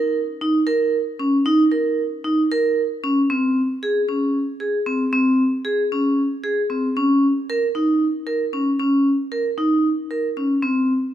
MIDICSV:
0, 0, Header, 1, 2, 480
1, 0, Start_track
1, 0, Tempo, 523560
1, 1340, Time_signature, 7, 3, 24, 8
1, 10215, End_track
2, 0, Start_track
2, 0, Title_t, "Vibraphone"
2, 0, Program_c, 0, 11
2, 0, Note_on_c, 0, 70, 71
2, 165, Note_off_c, 0, 70, 0
2, 379, Note_on_c, 0, 63, 70
2, 512, Note_off_c, 0, 63, 0
2, 612, Note_on_c, 0, 70, 81
2, 880, Note_off_c, 0, 70, 0
2, 1096, Note_on_c, 0, 61, 70
2, 1230, Note_off_c, 0, 61, 0
2, 1335, Note_on_c, 0, 63, 83
2, 1469, Note_off_c, 0, 63, 0
2, 1574, Note_on_c, 0, 70, 66
2, 1841, Note_off_c, 0, 70, 0
2, 2057, Note_on_c, 0, 63, 68
2, 2191, Note_off_c, 0, 63, 0
2, 2305, Note_on_c, 0, 70, 82
2, 2570, Note_off_c, 0, 70, 0
2, 2784, Note_on_c, 0, 61, 70
2, 2915, Note_off_c, 0, 61, 0
2, 3026, Note_on_c, 0, 60, 70
2, 3290, Note_off_c, 0, 60, 0
2, 3509, Note_on_c, 0, 68, 72
2, 3639, Note_off_c, 0, 68, 0
2, 3745, Note_on_c, 0, 61, 58
2, 4009, Note_off_c, 0, 61, 0
2, 4218, Note_on_c, 0, 68, 63
2, 4351, Note_off_c, 0, 68, 0
2, 4459, Note_on_c, 0, 60, 61
2, 4592, Note_off_c, 0, 60, 0
2, 4699, Note_on_c, 0, 60, 77
2, 4965, Note_off_c, 0, 60, 0
2, 5177, Note_on_c, 0, 68, 71
2, 5311, Note_off_c, 0, 68, 0
2, 5428, Note_on_c, 0, 61, 61
2, 5691, Note_off_c, 0, 61, 0
2, 5900, Note_on_c, 0, 68, 64
2, 6033, Note_off_c, 0, 68, 0
2, 6143, Note_on_c, 0, 60, 60
2, 6275, Note_off_c, 0, 60, 0
2, 6386, Note_on_c, 0, 61, 79
2, 6651, Note_off_c, 0, 61, 0
2, 6872, Note_on_c, 0, 70, 75
2, 7002, Note_off_c, 0, 70, 0
2, 7105, Note_on_c, 0, 63, 66
2, 7370, Note_off_c, 0, 63, 0
2, 7579, Note_on_c, 0, 70, 66
2, 7713, Note_off_c, 0, 70, 0
2, 7821, Note_on_c, 0, 61, 63
2, 7954, Note_off_c, 0, 61, 0
2, 8062, Note_on_c, 0, 61, 73
2, 8328, Note_off_c, 0, 61, 0
2, 8542, Note_on_c, 0, 70, 68
2, 8675, Note_off_c, 0, 70, 0
2, 8781, Note_on_c, 0, 63, 65
2, 9048, Note_off_c, 0, 63, 0
2, 9266, Note_on_c, 0, 70, 58
2, 9398, Note_off_c, 0, 70, 0
2, 9506, Note_on_c, 0, 61, 64
2, 9638, Note_off_c, 0, 61, 0
2, 9741, Note_on_c, 0, 60, 72
2, 10008, Note_off_c, 0, 60, 0
2, 10215, End_track
0, 0, End_of_file